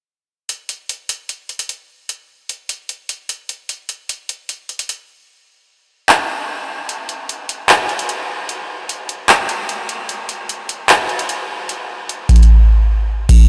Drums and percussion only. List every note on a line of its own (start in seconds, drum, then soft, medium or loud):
0.49 closed hi-hat medium
0.69 closed hi-hat medium
0.89 closed hi-hat medium
1.09 closed hi-hat medium
1.29 closed hi-hat medium
1.49 closed hi-hat soft
1.59 closed hi-hat medium
1.69 closed hi-hat medium
2.09 closed hi-hat medium
2.49 closed hi-hat medium
2.69 closed hi-hat medium
2.89 closed hi-hat medium
3.09 closed hi-hat medium
3.29 closed hi-hat medium
3.49 closed hi-hat medium
3.69 closed hi-hat medium
3.89 closed hi-hat medium
4.09 closed hi-hat medium
4.29 closed hi-hat medium
4.49 closed hi-hat medium
4.69 closed hi-hat soft
4.79 closed hi-hat medium
4.89 closed hi-hat medium
6.09 clap loud
6.89 closed hi-hat medium
7.09 closed hi-hat medium
7.29 closed hi-hat medium
7.49 closed hi-hat medium
7.69 clap loud
7.69 closed hi-hat medium
7.89 closed hi-hat soft
7.99 closed hi-hat medium
8.09 closed hi-hat medium
8.49 closed hi-hat medium
8.89 closed hi-hat medium
9.09 closed hi-hat medium
9.29 clap loud
9.29 closed hi-hat medium
9.49 closed hi-hat medium
9.69 closed hi-hat medium
9.89 closed hi-hat medium
10.09 closed hi-hat medium
10.29 closed hi-hat medium
10.49 closed hi-hat medium
10.69 closed hi-hat medium
10.89 clap loud
10.89 closed hi-hat medium
11.09 closed hi-hat soft
11.19 closed hi-hat medium
11.29 closed hi-hat medium
11.69 closed hi-hat medium
12.09 closed hi-hat medium
12.29 kick medium
12.29 closed hi-hat medium
12.36 closed hi-hat medium
12.43 closed hi-hat medium
13.29 kick loud
13.29 closed hi-hat medium
13.29 crash loud